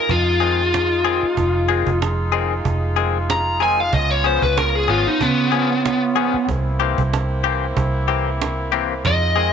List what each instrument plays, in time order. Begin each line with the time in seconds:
Already playing: horn section G#3 D#4 F4
0.09 fingered electric bass F2, lead electric guitar F4, cajon bass
0.40 clean electric guitar D#3 G#3 C4 G#4
0.74 cajon slap
1.05 clean electric guitar D#3 G#3 C4 G#4
1.23 muted fingered electric bass stroke
1.37 fingered electric bass F1, cajon bass
1.69 clean electric guitar D#3 G#3 C4 G#4
1.87 fingered electric bass F1, cajon bass
2.02 cajon slap
2.32 clean electric guitar D#3 G#3 C4 G#4
2.65 fingered electric bass F1, cajon bass
2.96 clean electric guitar D#3 G#3 C4 G#4
3.30 lead electric guitar A#5, cajon slap
3.60 clean electric guitar D#3 G#3 C4 G#4, lead electric guitar G#5
3.80 lead electric guitar F5
3.93 fingered electric bass C#2, horn section B3 C#4, lead electric guitar D#5, cajon bass
4.11 lead electric guitar C#5
4.24 clean electric guitar F3 B3 C#4 G#4, lead electric guitar C5
4.42 fingered electric bass C#2, lead electric guitar B4, cajon bass
4.57 lead electric guitar A#4, cajon slap
4.75 lead electric guitar G#4
4.88 fingered electric bass G#1, clean electric guitar F3 B3 C#4 G#4, lead electric guitar F4
5.06 lead electric guitar D#4, muted fingered electric bass stroke
5.20 fingered electric bass C#3, lead electric guitar B3, cajon bass
5.52 clean electric guitar F3 B3 C#4 G#4
5.85 cajon slap
6.16 clean electric guitar F3 B3 C#4 G#4
6.34 muted fingered electric bass stroke
6.48 fingered electric bass C2, horn section A#3 C4 E4, cajon bass
6.80 clean electric guitar E3 A#3 C4 G4
6.98 fingered electric bass C2, cajon bass
7.13 cajon slap
7.44 clean electric guitar E3 A#3 C4 G4
7.63 cajon slap
7.77 fingered electric bass C2, cajon bass
8.08 clean electric guitar E3 A#3 C4 G4
8.42 cajon slap
8.72 clean electric guitar E3 A#3 C4 G4
9.05 fingered electric bass F2, horn section G#3 D#4 F4, lead electric guitar D#5, cajon bass
9.36 clean electric guitar D#3 G#3 C4 G#4